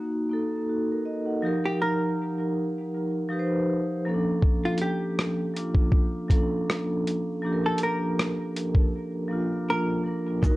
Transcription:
Already playing: A#3 D#4 F#4
0.29 A#3 D#4 A4
0.69 F#4
0.92 A#4
1.06 D#5
1.26 F#5
1.42 F3 D#4 G4
1.47 A#4
1.66 G4
1.82 A#4
3.29 F3 D#4 G4
3.33 B4
3.39 C5
4.05 F3 A#3 C#4
4.09 A4
4.14 D4
4.43 kick
4.65 F4
4.78 G4, closed hi-hat
5.19 cross-stick
5.54 F3 A#3 D4, closed hi-hat
5.58 F4
5.75 kick
5.92 kick
6.28 F3 A#3 C#4, kick, closed hi-hat
6.33 A4
6.37 D4
6.70 cross-stick
7.07 closed hi-hat
7.42 F3 A#3 D4
7.46 G4
7.53 A#4
7.66 A4
7.78 closed hi-hat
7.83 A#4
8.19 cross-stick
8.56 closed hi-hat
8.75 kick
9.28 F3 A#3 D4
9.32 F4
9.70 A#4
10.03 F3 A#3 D4
10.07 A#4
10.42 D#2 D#4 F#4, kick, shaker
10.46 A#4

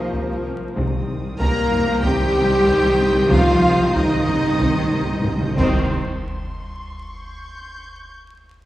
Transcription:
Already playing: C2 C3 D#3 F3 A#3 C4 D#4 A#4 D#5 G5 C#6
0.13 C3, taiko
0.46 C4
0.75 C2 C3 D#3 C4 C5 D#6, taiko
0.85 C3
0.92 C3
0.99 C3
1.06 C3
1.14 C3
1.20 C3
1.27 C3
1.34 C3
1.38 C3 A#3 A#4 A#5 G6, taiko
1.43 C3
1.50 C3
1.59 C3
1.65 C3
1.71 C3, taiko low
1.80 C3
1.87 C3
1.96 C3
2.03 C3 G3 G4 G5, taiko
2.11 C3
2.18 C3
2.25 C3
2.34 C3
2.42 C3
2.49 C3
2.57 C3
2.64 C3, taiko
2.69 C3
2.78 C3
2.85 C3
2.92 C3
2.99 C3 C4
3.08 C3
3.16 C3
3.22 C3
3.30 C3 F3 F4 F5, taiko
3.38 C3
3.53 C3
3.60 C3
3.65 C3
3.76 C3
3.83 C3
3.90 C3 D#4
3.94 C3 D#3 D#5, taiko
4.05 C3
4.14 C3
4.21 C3
4.27 C3, taiko low
4.37 C3
4.43 C3
4.51 C3
4.59 C3, taiko
4.67 C3
4.74 C3
4.82 C3
4.90 C3
4.98 C3
5.05 C3
5.13 C3
5.20 C3
5.24 C3, taiko low-mid
5.36 C3
5.41 C3, taiko mid
5.51 C3
5.56 C2 C3 D#3 C4 C5 C6, concert bass drum, taiko, crash
6.57 C#6
7.21 G6

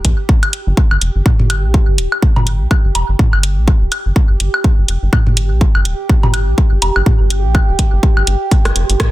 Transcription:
Already playing: G4
0.05 A#1, kick, closed hi-hat
0.29 kick
0.43 closed hi-hat, high woodblock
0.53 closed hi-hat
0.67 G1
0.77 G4, kick
0.91 G1, high woodblock
1.01 F1, closed hi-hat
1.15 G1
1.26 kick, mid tom
1.40 G1, mid tom
1.50 closed hi-hat, high woodblock
1.64 A#1
1.74 kick
1.88 G1
1.98 D1, closed hi-hat
2.12 high woodblock
2.22 kick
2.36 G1, mid tom, low woodblock
2.47 closed hi-hat
2.61 A#1
2.71 kick, high woodblock
2.85 G1
2.95 F1, closed hi-hat, low woodblock
3.09 G1
3.19 kick, mid tom
3.33 G1, high woodblock
3.43 closed hi-hat
3.57 A#1
3.68 kick
3.82 D1
3.92 closed hi-hat, high woodblock
4.06 G1
4.16 kick
4.30 G1
4.40 G1, closed hi-hat
4.54 high woodblock
4.64 kick
4.78 G1
4.88 F1, closed hi-hat
5.03 G1
5.13 kick, mid tom, high woodblock
5.27 G1, mid tom
5.37 closed hi-hat
5.51 A#1
5.61 kick
5.75 G1, high woodblock
5.85 D1, closed hi-hat
6.09 kick
6.23 G1, mid tom, low woodblock
6.34 closed hi-hat, high woodblock
6.48 A#1
6.58 kick
6.72 G1
6.82 F1, closed hi-hat, low woodblock
6.96 G1, high woodblock
7.06 kick, mid tom
7.20 G1
7.30 closed hi-hat
7.44 A#1
7.55 kick, high woodblock
7.69 D1
7.79 kick, closed hi-hat
7.93 G1
8.03 kick
8.17 G1, high woodblock
8.27 G1, closed hi-hat
8.51 kick, closed hi-hat
8.65 G1, cross-stick, closed hi-hat, high woodblock
8.76 F1, closed hi-hat
8.90 G1, closed hi-hat
9.00 kick, cross-stick, closed hi-hat, mid tom

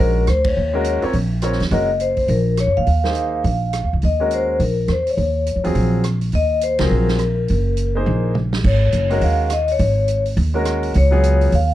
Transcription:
Already playing: G#3 C#4 F#4 A#4
0.00 A#1 A#4
0.27 D2 C5, cross-stick, closed hi-hat
0.44 C#5, kick, ride
0.57 D#2
0.73 G#3 C#4 F#4 A#4
0.84 closed hi-hat
1.02 C4 F4 A#4 C#5, muted upright bass stroke, open hi-hat
1.13 A#1, open hi-hat
1.42 C4 F4 A#4 C#5, cross-stick, closed hi-hat
1.52 snare
1.60 E2, snare, open hi-hat
1.71 F#1 G#3 C#4 F#4 A#4 D#5, open hi-hat
2.00 C5, closed hi-hat
2.17 kick, open hi-hat
2.28 A#1 A#4, open hi-hat
2.57 C#5, cross-stick, closed hi-hat
2.67 F#2
2.77 A#2 F5
2.86 D#2, open hi-hat
3.04 A#3 D#4 G#4 C5, snare
3.15 closed hi-hat
3.44 A#1, open hi-hat
3.73 cross-stick, closed hi-hat
3.84 D#2
3.93 C#2
4.02 D#2 D#5, open hi-hat
4.20 G#3 C#4 F#4 A#4
4.31 C5, closed hi-hat
4.60 A#1 A#4, open hi-hat
4.88 E2 C5, cross-stick, closed hi-hat
5.07 C#5, open hi-hat
5.17 D#2, open hi-hat
5.46 closed hi-hat
5.56 F2
5.64 E2 F#3 C4 F4 G#4, open hi-hat
5.75 A#1, open hi-hat
6.04 cross-stick, closed hi-hat
6.21 open hi-hat
6.32 D#2 D#5, open hi-hat
6.61 C5, closed hi-hat
6.79 C#2 F#3 C4 F4 G#4 A#4, snare, ride
6.91 A#1
7.08 snare
7.19 cross-stick, closed hi-hat
7.48 F#1, open hi-hat
7.77 closed hi-hat
7.95 A#3 D#4 G#4 C5
8.06 A#1, mid tom
8.35 mid tom
8.53 snare
8.64 G#1 C#5, kick, crash
8.92 F#1, closed hi-hat
9.10 G#3 C#4 F#4 A#4, open hi-hat
9.21 D#2 F5, open hi-hat
9.50 D#5, cross-stick, closed hi-hat
9.68 C#5, open hi-hat
9.79 G#1, open hi-hat
10.08 closed hi-hat
10.26 open hi-hat
10.37 D#2, open hi-hat
10.54 G#3 C#4 F#4 A#4
10.65 cross-stick, closed hi-hat
10.83 open hi-hat
10.94 C#2 C#5, open hi-hat
11.11 F#3 B3 F4 G#4
11.24 closed hi-hat
11.41 open hi-hat
11.52 D#2 F5, open hi-hat

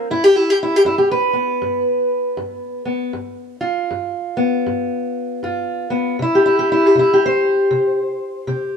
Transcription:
0.10 G2 E4
0.24 G4
0.36 E4
0.50 G4
0.63 E4
0.76 G4
0.85 G2 E4
0.98 G4
1.11 B4
1.33 B3
1.62 G2
2.37 G2
2.85 B3
3.13 G2
3.61 F4
3.91 G2
4.37 B3
4.66 G2
5.43 G2 F4
5.90 B3
6.19 C3 E4
6.35 G4
6.46 E4
6.59 G4
6.72 E4
6.86 G4
6.95 C3
6.99 E4
7.14 G4
7.26 C5
7.71 C3
8.47 C3 G4

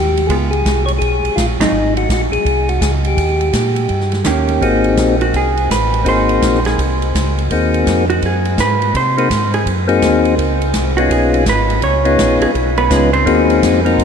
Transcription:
Already playing: D#2 G4
0.17 ride
0.27 C#2 G#3 G#4, kick, ride
0.31 B3 F4
0.51 G#4, ride
0.65 C2, kick, snare, hi-hat pedal, ride
0.86 C#5, ride
0.99 B1 G#4, kick, ride
1.23 B1, ride
1.36 A#1 F4, kick, snare, hi-hat pedal, ride
1.59 A#1 F#3 C4 D#4, snare, ride
1.72 G#1
1.97 F#4, ride
2.09 A#1 F#4, kick, snare, hi-hat pedal, ride
2.31 A#1 G#4, ride
2.45 C2, kick, ride
2.69 F#4, ride
2.81 C#2 G#4, kick, snare, hi-hat pedal, ride
3.05 G4, ride
3.17 D#2, kick, ride
3.41 ride
3.53 A#2, kick, snare, hi-hat pedal, ride
3.76 ride
3.89 G2, kick, ride
4.01 snare
4.12 snare, ride
4.24 D#2 D#3 A#3 C#4 G4, kick, snare, hi-hat pedal, ride
4.48 ride
4.61 G#1 A#3 C4 D#4 F#4 G#4, kick, ride
4.84 ride
4.97 A#1, kick, snare, hi-hat pedal, ride
5.21 F#4, ride
5.34 C2 G#4, kick, ride
5.57 ride
5.70 A1 B4, kick, snare, hi-hat pedal, ride
5.94 ride
6.04 G#1 A#3 C4 D#4 F#4 G#4, kick, ride
6.09 C5
6.29 ride
6.42 A#1, kick, snare, hi-hat pedal, ride
6.55 snare
6.65 G#4, snare, ride
6.78 C2, kick, ride
7.02 ride
7.15 C#2, kick, snare, hi-hat pedal, ride
7.38 ride
7.50 D#2 A#3 C4 D#4 F#4 G#4, kick, ride
7.74 ride
7.86 F2, kick, snare, hi-hat pedal, ride
8.10 F#4, ride
8.22 F#2 G#4, kick, ride
8.45 ride
8.58 G#2 B4, kick, snare, hi-hat pedal, ride
8.82 ride
8.94 C3 C5, kick, ride
9.17 A#3 C4 D#4 F#4 G#4, ride
9.30 G#2, kick, snare, hi-hat pedal, ride
9.54 G#4, ride
9.66 F#2, kick, ride
9.87 A#3 C4 D#4 F#4 G#4, ride
10.02 D#2, kick, snare, hi-hat pedal, ride
10.25 ride
10.38 C#2, kick, ride
10.62 ride
10.74 C2, kick, snare, hi-hat pedal, ride
10.97 B3 C#4 D#4 F4 F#4 G#4, ride
11.11 B1 G#4, kick, ride
11.34 ride
11.46 G#1 B4, kick, snare, hi-hat pedal, ride
11.70 ride
11.82 C#2 C#5, kick, ride
12.05 B3 C#4 D#4 F4 G#4, ride
12.18 A#1, kick, snare, hi-hat pedal, ride
12.40 A#1 G#4, ride
12.54 B1, kick, ride
12.77 B3 B4, ride
12.90 C#2 G#3 B3 C#4 D#4 F4 G#4 B4, kick, snare, hi-hat pedal, ride
13.13 C4 C5, ride
13.26 D#2 A#3 C4 D#4 F#4 G#4, kick, ride
13.50 ride
13.62 F2, kick, snare, hi-hat pedal, ride
13.85 A#3 C4 D#4 F#4 A#4, ride
13.98 F#2, kick, ride

